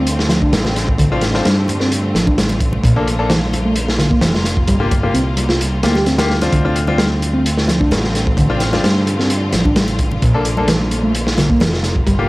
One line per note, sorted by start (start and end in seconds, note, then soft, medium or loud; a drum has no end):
0.00 0.54 D2 loud
0.00 6.49 D3 medium
0.00 4.64 A3 medium
0.00 2.80 C4 medium
0.00 2.80 F4 medium
0.07 closed hi-hat medium
0.19 snare medium
0.29 0.41 F3 medium
0.29 snare medium
0.29 closed hi-hat medium
0.41 0.52 D4 medium
0.41 kick loud
0.52 1.40 A1 loud
0.52 0.60 G3 medium
0.52 snare loud
0.52 closed hi-hat medium
0.65 snare medium
0.65 high conga medium
0.76 snare soft
0.76 closed hi-hat medium
0.89 kick medium
0.98 1.07 D3 loud
0.98 kick loud
0.98 closed hi-hat medium
1.12 1.21 C4 medium
1.12 1.21 D4 medium
1.12 1.21 F4 loud
1.21 snare medium
1.21 closed hi-hat medium
1.34 1.44 C4 medium
1.34 1.44 D4 medium
1.34 1.44 F4 loud
1.34 snare soft
1.45 2.14 G2 medium
1.45 1.53 G3 medium
1.45 snare loud
1.45 closed hi-hat medium
1.68 closed hi-hat medium
1.68 high conga medium
1.80 1.91 C4 medium
1.80 snare soft
1.92 closed hi-hat medium
2.15 2.78 A1 loud
2.15 2.26 F3 medium
2.15 snare soft
2.15 closed hi-hat medium
2.26 2.36 D4 medium
2.26 kick medium
2.26 muted conga soft
2.38 2.45 G3 medium
2.38 snare loud
2.38 closed hi-hat medium
2.49 closed hi-hat soft
2.49 muted conga medium
2.49 high conga medium
2.60 kick medium
2.60 closed hi-hat medium
2.73 muted conga medium
2.73 low conga medium
2.84 4.24 A#1 loud
2.84 2.92 A#2 loud
2.84 6.50 A#3 medium
2.84 6.50 F4 medium
2.84 kick loud
2.84 closed hi-hat medium
2.96 3.06 A#3 loud
2.96 3.06 D4 medium
2.96 3.06 A4 loud
3.08 closed hi-hat medium
3.19 3.29 A#3 medium
3.19 3.29 D4 medium
3.19 3.29 A4 loud
3.30 3.38 E3 medium
3.30 snare loud
3.30 closed hi-hat medium
3.53 closed hi-hat medium
3.53 high conga medium
3.65 3.76 A3 medium
3.76 closed hi-hat medium
3.88 snare medium
3.99 4.10 D3 medium
3.99 snare medium
3.99 closed hi-hat medium
4.11 4.21 A#3 medium
4.11 kick loud
4.21 4.69 F1 loud
4.21 4.30 E3 medium
4.21 snare loud
4.21 closed hi-hat medium
4.35 snare medium
4.35 high conga medium
4.44 snare soft
4.44 closed hi-hat medium
4.57 kick loud
4.68 5.09 G1 loud
4.68 4.76 G3 loud
4.68 6.51 G3 medium
4.68 kick loud
4.68 closed hi-hat medium
4.80 4.90 A#3 medium
4.80 4.90 F4 medium
4.80 4.90 G4 loud
4.91 kick loud
4.91 closed hi-hat medium
4.91 muted conga medium
5.03 5.13 A#3 medium
5.03 5.13 F4 medium
5.03 5.13 G4 loud
5.14 5.83 C2 medium
5.14 5.22 C4 medium
5.14 closed hi-hat medium
5.37 closed hi-hat medium
5.37 high conga medium
5.49 5.60 F4 medium
5.49 snare soft
5.61 closed hi-hat medium
5.83 6.48 D2 loud
5.83 5.94 A#3 medium
5.83 5.95 A#3 medium
5.83 5.95 F4 medium
5.83 5.95 G4 loud
5.83 snare loud
5.83 closed hi-hat medium
5.95 6.05 G4 medium
5.95 snare soft
5.95 muted conga medium
6.06 6.14 C4 medium
6.06 snare soft
6.06 closed hi-hat medium
6.18 6.29 A#3 loud
6.18 6.29 F4 medium
6.18 6.29 G4 loud
6.18 snare loud
6.18 closed hi-hat medium
6.18 muted conga medium
6.18 high conga medium
6.30 snare soft
6.41 6.62 C4 medium
6.41 6.62 D4 medium
6.41 6.62 F4 loud
6.41 snare soft
6.41 closed hi-hat medium
6.41 muted conga medium
6.41 low conga medium
6.52 7.93 D2 loud
6.52 6.61 D3 loud
6.52 12.03 D3 medium
6.52 10.19 A3 medium
6.52 10.19 C4 medium
6.52 12.03 F4 medium
6.52 kick loud
6.52 closed hi-hat medium
6.65 6.75 C4 loud
6.65 6.75 D4 medium
6.65 6.75 F4 loud
6.76 closed hi-hat medium
6.87 6.98 C4 medium
6.87 6.98 D4 medium
6.87 6.98 F4 loud
6.87 high conga loud
6.98 7.07 G3 medium
6.98 snare loud
6.98 closed hi-hat medium
7.22 closed hi-hat medium
7.34 7.44 C4 medium
7.46 closed hi-hat loud
7.57 snare medium
7.68 7.79 F3 medium
7.68 snare medium
7.68 closed hi-hat medium
7.68 high conga medium
7.80 7.90 D4 medium
7.80 kick medium
7.91 8.78 A1 loud
7.91 7.99 G3 medium
7.91 snare loud
7.91 closed hi-hat medium
7.91 high conga medium
8.04 snare soft
8.15 snare soft
8.15 closed hi-hat medium
8.27 kick medium
8.37 8.45 D3 loud
8.37 kick loud
8.37 closed hi-hat medium
8.50 8.60 C4 medium
8.50 8.59 D4 medium
8.50 8.60 F4 loud
8.60 snare soft
8.60 closed hi-hat medium
8.60 muted conga medium
8.73 8.83 C4 medium
8.73 8.83 D4 medium
8.73 8.83 F4 loud
8.73 snare soft
8.73 high conga loud
8.83 9.53 G2 medium
8.83 8.92 G3 medium
8.83 snare loud
8.83 closed hi-hat medium
9.07 closed hi-hat medium
9.19 9.29 C4 medium
9.19 snare soft
9.30 closed hi-hat loud
9.53 10.17 A1 medium
9.53 9.64 F3 medium
9.53 snare medium
9.53 closed hi-hat medium
9.53 high conga medium
9.65 9.75 D4 medium
9.65 kick loud
9.65 muted conga medium
9.76 9.84 G3 medium
9.76 snare loud
9.76 closed hi-hat medium
9.76 high conga medium
9.88 closed hi-hat soft
9.88 muted conga medium
9.99 kick medium
9.99 closed hi-hat medium
10.11 muted conga medium
10.11 low conga medium
10.22 11.62 A#1 loud
10.22 10.30 A#2 loud
10.22 12.05 A3 medium
10.22 12.29 A#3 medium
10.22 kick loud
10.22 closed hi-hat medium
10.34 10.44 A#3 medium
10.34 10.44 D4 medium
10.34 10.44 A4 loud
10.45 closed hi-hat medium
10.57 10.67 A#3 medium
10.57 10.67 D4 medium
10.57 10.67 A4 loud
10.57 high conga loud
10.68 10.76 E3 medium
10.68 snare loud
10.68 closed hi-hat medium
10.91 closed hi-hat medium
11.03 11.14 A3 medium
11.15 closed hi-hat medium
11.27 snare medium
11.37 11.49 D3 medium
11.37 snare medium
11.37 closed hi-hat medium
11.37 high conga medium
11.49 11.59 A#3 medium
11.49 kick loud
11.60 12.01 F1 loud
11.60 11.68 E3 medium
11.60 snare loud
11.60 closed hi-hat medium
11.60 high conga loud
11.73 snare medium
11.83 snare soft
11.83 closed hi-hat medium
11.96 kick medium
12.07 12.29 G1 loud
12.07 12.29 D3 medium
12.07 12.14 G3 loud
12.07 12.29 G3 medium
12.07 12.29 F4 loud
12.07 kick loud
12.07 closed hi-hat medium
12.19 12.29 A#3 loud
12.19 12.29 F4 medium
12.19 12.29 G4 loud